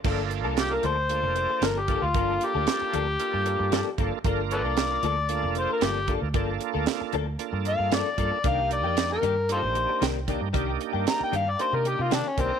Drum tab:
CC |x-------|--------|--------|--------|
HH |-xxxxxxx|xxxxxxxx|xxxxxxxx|xxxxxxxx|
SD |--o---o-|--o---o-|--o---o-|--o---o-|
BD |o------o|o------o|o------o|o------o|

CC |--------|--------|
HH |xxxxxxxx|xxxxxxxx|
SD |--o---o-|--o---o-|
BD |o------o|o------o|